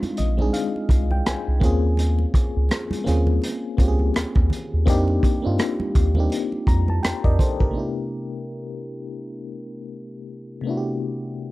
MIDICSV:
0, 0, Header, 1, 4, 480
1, 0, Start_track
1, 0, Tempo, 722892
1, 1312, Time_signature, 4, 2, 24, 8
1, 7647, End_track
2, 0, Start_track
2, 0, Title_t, "FM electric piano"
2, 0, Program_c, 0, 5
2, 0, Control_c, 0, 64, 127
2, 0, Note_on_c, 0, 56, 79
2, 0, Note_on_c, 0, 60, 71
2, 0, Note_on_c, 0, 62, 68
2, 0, Note_on_c, 0, 63, 71
2, 0, Note_on_c, 0, 65, 91
2, 119, Note_on_c, 0, 75, 67
2, 167, Note_off_c, 0, 56, 0
2, 173, Note_off_c, 0, 60, 0
2, 177, Note_off_c, 0, 62, 0
2, 179, Note_off_c, 0, 63, 0
2, 184, Note_off_c, 0, 65, 0
2, 247, Note_on_c, 0, 56, 72
2, 253, Note_on_c, 0, 60, 69
2, 264, Note_on_c, 0, 62, 68
2, 270, Note_on_c, 0, 63, 70
2, 277, Note_on_c, 0, 68, 83
2, 339, Note_off_c, 0, 75, 0
2, 354, Note_on_c, 0, 77, 62
2, 708, Note_off_c, 0, 77, 0
2, 741, Note_on_c, 0, 79, 69
2, 829, Note_off_c, 0, 79, 0
2, 838, Note_on_c, 0, 80, 63
2, 1056, Note_off_c, 0, 56, 0
2, 1059, Note_off_c, 0, 60, 0
2, 1063, Note_on_c, 0, 58, 85
2, 1065, Note_off_c, 0, 62, 0
2, 1068, Note_off_c, 0, 63, 0
2, 1070, Note_on_c, 0, 60, 77
2, 1071, Note_off_c, 0, 68, 0
2, 1077, Note_on_c, 0, 61, 77
2, 1080, Control_c, 0, 64, 0
2, 1085, Note_on_c, 0, 65, 79
2, 1096, Note_on_c, 0, 68, 100
2, 1200, Control_c, 0, 64, 127
2, 1288, Note_off_c, 0, 80, 0
2, 1911, Note_off_c, 0, 58, 0
2, 1915, Note_off_c, 0, 60, 0
2, 1919, Note_off_c, 0, 61, 0
2, 1922, Note_off_c, 0, 65, 0
2, 1928, Note_off_c, 0, 68, 0
2, 2019, Note_on_c, 0, 58, 86
2, 2026, Note_on_c, 0, 60, 72
2, 2034, Note_on_c, 0, 61, 79
2, 2044, Note_on_c, 0, 65, 76
2, 2051, Note_on_c, 0, 68, 82
2, 2450, Note_off_c, 0, 58, 0
2, 2454, Note_off_c, 0, 60, 0
2, 2458, Note_off_c, 0, 61, 0
2, 2463, Note_off_c, 0, 65, 0
2, 2466, Note_off_c, 0, 68, 0
2, 2504, Note_on_c, 0, 58, 69
2, 2514, Note_on_c, 0, 60, 68
2, 2520, Note_on_c, 0, 61, 65
2, 2529, Note_on_c, 0, 65, 63
2, 2536, Note_on_c, 0, 67, 64
2, 2575, Note_off_c, 0, 67, 0
2, 2577, Note_on_c, 0, 68, 81
2, 3145, Note_off_c, 0, 58, 0
2, 3150, Note_off_c, 0, 60, 0
2, 3153, Note_off_c, 0, 61, 0
2, 3157, Note_off_c, 0, 65, 0
2, 3182, Note_off_c, 0, 68, 0
2, 3224, Note_on_c, 0, 58, 98
2, 3227, Note_on_c, 0, 60, 90
2, 3238, Note_on_c, 0, 62, 88
2, 3241, Control_c, 0, 64, 0
2, 3248, Note_on_c, 0, 63, 99
2, 3251, Note_on_c, 0, 67, 120
2, 3355, Control_c, 0, 64, 127
2, 3550, Note_off_c, 0, 58, 0
2, 3551, Note_off_c, 0, 60, 0
2, 3557, Note_off_c, 0, 62, 0
2, 3562, Note_off_c, 0, 63, 0
2, 3563, Note_off_c, 0, 67, 0
2, 3599, Note_on_c, 0, 58, 76
2, 3609, Note_on_c, 0, 60, 70
2, 3617, Note_on_c, 0, 62, 76
2, 3621, Note_on_c, 0, 63, 76
2, 3629, Note_on_c, 0, 65, 89
2, 4007, Note_off_c, 0, 58, 0
2, 4012, Note_off_c, 0, 60, 0
2, 4016, Note_off_c, 0, 62, 0
2, 4018, Note_off_c, 0, 63, 0
2, 4022, Note_off_c, 0, 65, 0
2, 4083, Note_on_c, 0, 58, 72
2, 4094, Note_on_c, 0, 60, 68
2, 4102, Note_on_c, 0, 62, 68
2, 4107, Note_on_c, 0, 63, 70
2, 4116, Note_on_c, 0, 67, 79
2, 4432, Note_on_c, 0, 82, 65
2, 4564, Note_off_c, 0, 82, 0
2, 4579, Note_on_c, 0, 81, 61
2, 4666, Note_on_c, 0, 79, 67
2, 4668, Note_off_c, 0, 81, 0
2, 4683, Note_off_c, 0, 67, 0
2, 4801, Note_off_c, 0, 79, 0
2, 4808, Note_on_c, 0, 74, 67
2, 4810, Note_on_c, 0, 75, 65
2, 4811, Note_on_c, 0, 70, 52
2, 4895, Note_off_c, 0, 58, 0
2, 4900, Note_off_c, 0, 60, 0
2, 4904, Note_off_c, 0, 62, 0
2, 4904, Note_off_c, 0, 74, 0
2, 4906, Note_off_c, 0, 63, 0
2, 4906, Note_off_c, 0, 70, 0
2, 4909, Note_on_c, 0, 72, 71
2, 4916, Note_on_c, 0, 69, 58
2, 5044, Note_on_c, 0, 70, 60
2, 5045, Note_off_c, 0, 72, 0
2, 5049, Note_off_c, 0, 69, 0
2, 5052, Note_on_c, 0, 67, 50
2, 5109, Note_on_c, 0, 48, 53
2, 5119, Note_on_c, 0, 57, 52
2, 5126, Note_off_c, 0, 75, 0
2, 5134, Note_on_c, 0, 59, 53
2, 5145, Note_on_c, 0, 62, 53
2, 5159, Control_c, 0, 64, 0
2, 5159, Note_on_c, 0, 64, 54
2, 5165, Note_off_c, 0, 67, 0
2, 5173, Note_on_c, 0, 67, 61
2, 5275, Control_c, 0, 64, 127
2, 5277, Note_off_c, 0, 70, 0
2, 7024, Note_off_c, 0, 48, 0
2, 7029, Note_off_c, 0, 57, 0
2, 7037, Note_off_c, 0, 59, 0
2, 7042, Note_off_c, 0, 62, 0
2, 7047, Note_on_c, 0, 48, 64
2, 7049, Note_off_c, 0, 64, 0
2, 7056, Note_off_c, 0, 67, 0
2, 7062, Note_on_c, 0, 57, 57
2, 7073, Note_on_c, 0, 59, 51
2, 7086, Note_on_c, 0, 62, 57
2, 7098, Note_on_c, 0, 64, 58
2, 7109, Note_on_c, 0, 66, 51
2, 7141, Note_off_c, 0, 66, 0
2, 7153, Note_on_c, 0, 67, 62
2, 7647, Note_off_c, 0, 48, 0
2, 7647, Note_off_c, 0, 57, 0
2, 7647, Note_off_c, 0, 59, 0
2, 7647, Note_off_c, 0, 62, 0
2, 7647, Note_off_c, 0, 64, 0
2, 7647, Note_off_c, 0, 67, 0
2, 7647, End_track
3, 0, Start_track
3, 0, Title_t, "Analog synth bass"
3, 0, Program_c, 1, 38
3, 128, Note_on_c, 1, 34, 86
3, 332, Note_off_c, 1, 34, 0
3, 599, Note_on_c, 1, 36, 76
3, 807, Note_off_c, 1, 36, 0
3, 849, Note_on_c, 1, 36, 45
3, 901, Note_off_c, 1, 36, 0
3, 984, Note_on_c, 1, 36, 86
3, 1077, Note_on_c, 1, 39, 96
3, 1087, Note_off_c, 1, 36, 0
3, 1496, Note_off_c, 1, 39, 0
3, 1705, Note_on_c, 1, 37, 93
3, 1786, Note_off_c, 1, 37, 0
3, 2047, Note_on_c, 1, 39, 87
3, 2251, Note_off_c, 1, 39, 0
3, 2521, Note_on_c, 1, 37, 83
3, 2728, Note_off_c, 1, 37, 0
3, 2766, Note_on_c, 1, 39, 44
3, 2819, Note_off_c, 1, 39, 0
3, 2901, Note_on_c, 1, 39, 82
3, 2984, Note_off_c, 1, 39, 0
3, 3146, Note_on_c, 1, 39, 87
3, 3227, Note_off_c, 1, 39, 0
3, 3240, Note_on_c, 1, 41, 88
3, 3447, Note_off_c, 1, 41, 0
3, 3628, Note_on_c, 1, 43, 88
3, 3708, Note_off_c, 1, 43, 0
3, 3960, Note_on_c, 1, 39, 96
3, 4167, Note_off_c, 1, 39, 0
3, 4435, Note_on_c, 1, 41, 85
3, 4644, Note_off_c, 1, 41, 0
3, 4681, Note_on_c, 1, 41, 47
3, 4735, Note_off_c, 1, 41, 0
3, 4815, Note_on_c, 1, 41, 77
3, 4901, Note_off_c, 1, 41, 0
3, 5059, Note_on_c, 1, 34, 86
3, 5143, Note_off_c, 1, 34, 0
3, 7647, End_track
4, 0, Start_track
4, 0, Title_t, "Drums"
4, 18, Note_on_c, 9, 62, 29
4, 18, Note_on_c, 9, 63, 63
4, 21, Note_on_c, 9, 42, 43
4, 84, Note_off_c, 9, 62, 0
4, 84, Note_off_c, 9, 63, 0
4, 87, Note_off_c, 9, 42, 0
4, 114, Note_on_c, 9, 42, 58
4, 127, Note_on_c, 9, 64, 63
4, 181, Note_off_c, 9, 42, 0
4, 194, Note_off_c, 9, 64, 0
4, 257, Note_on_c, 9, 63, 54
4, 257, Note_on_c, 9, 64, 51
4, 324, Note_off_c, 9, 63, 0
4, 324, Note_off_c, 9, 64, 0
4, 357, Note_on_c, 9, 42, 72
4, 424, Note_off_c, 9, 42, 0
4, 504, Note_on_c, 9, 62, 25
4, 571, Note_off_c, 9, 62, 0
4, 591, Note_on_c, 9, 36, 84
4, 602, Note_on_c, 9, 42, 59
4, 602, Note_on_c, 9, 63, 42
4, 657, Note_off_c, 9, 36, 0
4, 668, Note_off_c, 9, 42, 0
4, 669, Note_off_c, 9, 63, 0
4, 734, Note_on_c, 9, 63, 60
4, 801, Note_off_c, 9, 63, 0
4, 839, Note_on_c, 9, 42, 82
4, 839, Note_on_c, 9, 62, 32
4, 840, Note_on_c, 9, 37, 102
4, 905, Note_off_c, 9, 42, 0
4, 905, Note_off_c, 9, 62, 0
4, 907, Note_off_c, 9, 37, 0
4, 1072, Note_on_c, 9, 36, 96
4, 1072, Note_on_c, 9, 64, 57
4, 1085, Note_on_c, 9, 42, 59
4, 1138, Note_off_c, 9, 36, 0
4, 1138, Note_off_c, 9, 64, 0
4, 1151, Note_off_c, 9, 42, 0
4, 1310, Note_on_c, 9, 62, 35
4, 1320, Note_on_c, 9, 42, 77
4, 1377, Note_off_c, 9, 62, 0
4, 1387, Note_off_c, 9, 42, 0
4, 1452, Note_on_c, 9, 62, 30
4, 1518, Note_off_c, 9, 62, 0
4, 1553, Note_on_c, 9, 36, 92
4, 1561, Note_on_c, 9, 42, 56
4, 1620, Note_off_c, 9, 36, 0
4, 1627, Note_off_c, 9, 42, 0
4, 1786, Note_on_c, 9, 62, 30
4, 1799, Note_on_c, 9, 42, 71
4, 1802, Note_on_c, 9, 37, 97
4, 1853, Note_off_c, 9, 62, 0
4, 1866, Note_off_c, 9, 42, 0
4, 1868, Note_off_c, 9, 37, 0
4, 1930, Note_on_c, 9, 63, 68
4, 1945, Note_on_c, 9, 42, 50
4, 1996, Note_off_c, 9, 63, 0
4, 2011, Note_off_c, 9, 42, 0
4, 2034, Note_on_c, 9, 64, 62
4, 2039, Note_on_c, 9, 42, 59
4, 2101, Note_off_c, 9, 64, 0
4, 2105, Note_off_c, 9, 42, 0
4, 2169, Note_on_c, 9, 63, 56
4, 2169, Note_on_c, 9, 64, 60
4, 2235, Note_off_c, 9, 63, 0
4, 2235, Note_off_c, 9, 64, 0
4, 2268, Note_on_c, 9, 62, 30
4, 2281, Note_on_c, 9, 42, 77
4, 2335, Note_off_c, 9, 62, 0
4, 2348, Note_off_c, 9, 42, 0
4, 2510, Note_on_c, 9, 63, 44
4, 2512, Note_on_c, 9, 36, 82
4, 2521, Note_on_c, 9, 42, 58
4, 2577, Note_off_c, 9, 63, 0
4, 2578, Note_off_c, 9, 36, 0
4, 2587, Note_off_c, 9, 42, 0
4, 2650, Note_on_c, 9, 63, 56
4, 2717, Note_off_c, 9, 63, 0
4, 2749, Note_on_c, 9, 62, 30
4, 2761, Note_on_c, 9, 42, 82
4, 2763, Note_on_c, 9, 37, 102
4, 2816, Note_off_c, 9, 62, 0
4, 2828, Note_off_c, 9, 42, 0
4, 2829, Note_off_c, 9, 37, 0
4, 2890, Note_on_c, 9, 62, 30
4, 2893, Note_on_c, 9, 36, 90
4, 2956, Note_off_c, 9, 62, 0
4, 2959, Note_off_c, 9, 36, 0
4, 2988, Note_on_c, 9, 64, 60
4, 3006, Note_on_c, 9, 42, 57
4, 3054, Note_off_c, 9, 64, 0
4, 3073, Note_off_c, 9, 42, 0
4, 3233, Note_on_c, 9, 36, 105
4, 3240, Note_on_c, 9, 42, 87
4, 3299, Note_off_c, 9, 36, 0
4, 3306, Note_off_c, 9, 42, 0
4, 3372, Note_on_c, 9, 62, 28
4, 3438, Note_off_c, 9, 62, 0
4, 3473, Note_on_c, 9, 36, 96
4, 3481, Note_on_c, 9, 42, 58
4, 3539, Note_off_c, 9, 36, 0
4, 3547, Note_off_c, 9, 42, 0
4, 3708, Note_on_c, 9, 62, 29
4, 3713, Note_on_c, 9, 42, 75
4, 3716, Note_on_c, 9, 37, 106
4, 3774, Note_off_c, 9, 62, 0
4, 3780, Note_off_c, 9, 42, 0
4, 3783, Note_off_c, 9, 37, 0
4, 3850, Note_on_c, 9, 63, 66
4, 3916, Note_off_c, 9, 63, 0
4, 3952, Note_on_c, 9, 36, 89
4, 3952, Note_on_c, 9, 42, 59
4, 3953, Note_on_c, 9, 64, 62
4, 4018, Note_off_c, 9, 36, 0
4, 4019, Note_off_c, 9, 42, 0
4, 4019, Note_off_c, 9, 64, 0
4, 4082, Note_on_c, 9, 63, 56
4, 4082, Note_on_c, 9, 64, 52
4, 4148, Note_off_c, 9, 63, 0
4, 4148, Note_off_c, 9, 64, 0
4, 4183, Note_on_c, 9, 62, 29
4, 4197, Note_on_c, 9, 42, 78
4, 4250, Note_off_c, 9, 62, 0
4, 4263, Note_off_c, 9, 42, 0
4, 4330, Note_on_c, 9, 62, 25
4, 4397, Note_off_c, 9, 62, 0
4, 4429, Note_on_c, 9, 36, 83
4, 4430, Note_on_c, 9, 63, 45
4, 4438, Note_on_c, 9, 42, 55
4, 4495, Note_off_c, 9, 36, 0
4, 4497, Note_off_c, 9, 63, 0
4, 4505, Note_off_c, 9, 42, 0
4, 4569, Note_on_c, 9, 63, 59
4, 4635, Note_off_c, 9, 63, 0
4, 4670, Note_on_c, 9, 62, 31
4, 4677, Note_on_c, 9, 42, 84
4, 4679, Note_on_c, 9, 37, 108
4, 4736, Note_off_c, 9, 62, 0
4, 4744, Note_off_c, 9, 42, 0
4, 4745, Note_off_c, 9, 37, 0
4, 4809, Note_on_c, 9, 36, 84
4, 4876, Note_off_c, 9, 36, 0
4, 4908, Note_on_c, 9, 36, 83
4, 4908, Note_on_c, 9, 64, 54
4, 4917, Note_on_c, 9, 42, 59
4, 4974, Note_off_c, 9, 36, 0
4, 4974, Note_off_c, 9, 64, 0
4, 4983, Note_off_c, 9, 42, 0
4, 5049, Note_on_c, 9, 36, 94
4, 5116, Note_off_c, 9, 36, 0
4, 7647, End_track
0, 0, End_of_file